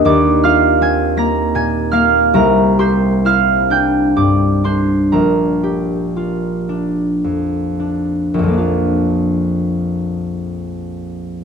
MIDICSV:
0, 0, Header, 1, 2, 480
1, 0, Start_track
1, 0, Tempo, 747198
1, 25, Time_signature, 6, 3, 24, 8
1, 984, Tempo, 800000
1, 1464, Tempo, 916031
1, 2424, Tempo, 955414
1, 2904, Tempo, 1039861
1, 3384, Tempo, 1094891
1, 4344, Tempo, 1054482
1, 5751, End_track
2, 0, Start_track
2, 0, Title_t, "Harp"
2, 0, Program_c, 0, 46
2, 0, Note_on_c, 0, 58, 45
2, 0, Note_on_c, 0, 62, 49
2, 0, Note_on_c, 0, 87, 82
2, 31, Note_on_c, 0, 39, 68
2, 36, Note_on_c, 0, 86, 65
2, 40, Note_on_c, 0, 74, 50
2, 204, Note_off_c, 0, 87, 0
2, 279, Note_on_c, 0, 89, 89
2, 283, Note_on_c, 0, 65, 59
2, 286, Note_on_c, 0, 77, 74
2, 522, Note_on_c, 0, 60, 56
2, 526, Note_on_c, 0, 92, 88
2, 530, Note_on_c, 0, 80, 63
2, 745, Note_off_c, 0, 58, 0
2, 751, Note_on_c, 0, 58, 51
2, 755, Note_on_c, 0, 94, 77
2, 763, Note_on_c, 0, 82, 61
2, 920, Note_off_c, 0, 92, 0
2, 991, Note_off_c, 0, 80, 0
2, 993, Note_on_c, 0, 46, 50
2, 995, Note_on_c, 0, 92, 87
2, 999, Note_on_c, 0, 80, 68
2, 1207, Note_off_c, 0, 89, 0
2, 1212, Note_off_c, 0, 58, 0
2, 1214, Note_on_c, 0, 89, 89
2, 1217, Note_off_c, 0, 77, 0
2, 1220, Note_on_c, 0, 58, 60
2, 1224, Note_on_c, 0, 77, 64
2, 1464, Note_off_c, 0, 82, 0
2, 1467, Note_on_c, 0, 36, 66
2, 1471, Note_on_c, 0, 82, 91
2, 1477, Note_on_c, 0, 70, 62
2, 1483, Note_off_c, 0, 89, 0
2, 1486, Note_off_c, 0, 39, 0
2, 1486, Note_off_c, 0, 46, 0
2, 1487, Note_off_c, 0, 77, 0
2, 1488, Note_off_c, 0, 65, 0
2, 1488, Note_off_c, 0, 92, 0
2, 1489, Note_off_c, 0, 80, 0
2, 1703, Note_on_c, 0, 67, 59
2, 1704, Note_on_c, 0, 84, 90
2, 1711, Note_on_c, 0, 72, 69
2, 1945, Note_on_c, 0, 64, 54
2, 1950, Note_on_c, 0, 89, 87
2, 1954, Note_on_c, 0, 77, 66
2, 2118, Note_off_c, 0, 62, 0
2, 2182, Note_on_c, 0, 62, 54
2, 2186, Note_on_c, 0, 91, 73
2, 2192, Note_on_c, 0, 79, 51
2, 2315, Note_off_c, 0, 86, 0
2, 2319, Note_off_c, 0, 74, 0
2, 2354, Note_off_c, 0, 89, 0
2, 2424, Note_on_c, 0, 43, 45
2, 2425, Note_on_c, 0, 86, 67
2, 2432, Note_on_c, 0, 74, 51
2, 2658, Note_off_c, 0, 62, 0
2, 2660, Note_off_c, 0, 84, 0
2, 2663, Note_off_c, 0, 72, 0
2, 2663, Note_on_c, 0, 62, 46
2, 2666, Note_on_c, 0, 84, 70
2, 2669, Note_on_c, 0, 72, 49
2, 2700, Note_off_c, 0, 60, 0
2, 2882, Note_off_c, 0, 94, 0
2, 2899, Note_off_c, 0, 82, 0
2, 2905, Note_on_c, 0, 82, 59
2, 2907, Note_off_c, 0, 70, 0
2, 2907, Note_on_c, 0, 34, 46
2, 2912, Note_on_c, 0, 70, 46
2, 2924, Note_off_c, 0, 43, 0
2, 2924, Note_off_c, 0, 64, 0
2, 2926, Note_off_c, 0, 36, 0
2, 2928, Note_off_c, 0, 84, 0
2, 2929, Note_off_c, 0, 72, 0
2, 3136, Note_off_c, 0, 67, 0
2, 3142, Note_on_c, 0, 67, 42
2, 3230, Note_off_c, 0, 58, 0
2, 3387, Note_on_c, 0, 65, 37
2, 3611, Note_off_c, 0, 62, 0
2, 3616, Note_on_c, 0, 62, 36
2, 3826, Note_off_c, 0, 77, 0
2, 3859, Note_on_c, 0, 41, 32
2, 4020, Note_off_c, 0, 91, 0
2, 4025, Note_off_c, 0, 79, 0
2, 4096, Note_off_c, 0, 62, 0
2, 4101, Note_on_c, 0, 62, 36
2, 4220, Note_off_c, 0, 86, 0
2, 4226, Note_off_c, 0, 74, 0
2, 4335, Note_off_c, 0, 34, 0
2, 4340, Note_on_c, 0, 34, 49
2, 4356, Note_off_c, 0, 41, 0
2, 4362, Note_off_c, 0, 67, 0
2, 4362, Note_on_c, 0, 41, 42
2, 4383, Note_on_c, 0, 53, 43
2, 4404, Note_on_c, 0, 58, 40
2, 4423, Note_off_c, 0, 62, 0
2, 4429, Note_on_c, 0, 62, 40
2, 4443, Note_off_c, 0, 65, 0
2, 4449, Note_on_c, 0, 65, 42
2, 4650, Note_off_c, 0, 82, 0
2, 4657, Note_off_c, 0, 70, 0
2, 5751, Note_off_c, 0, 34, 0
2, 5751, Note_off_c, 0, 41, 0
2, 5751, Note_off_c, 0, 53, 0
2, 5751, Note_off_c, 0, 58, 0
2, 5751, Note_off_c, 0, 62, 0
2, 5751, Note_off_c, 0, 65, 0
2, 5751, End_track
0, 0, End_of_file